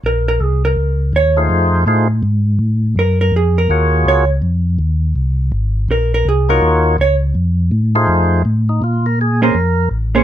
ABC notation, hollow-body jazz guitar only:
X:1
M:4/4
L:1/8
Q:"Swing" 1/4=164
K:Bbm
V:1 name="Hollow-body jazz guitar"
B B A B3 d z | z8 | B B A B3 d z | z8 |
B B A B3 d z | z8 | z3 [B,DAc] z3 [B,DAc] |]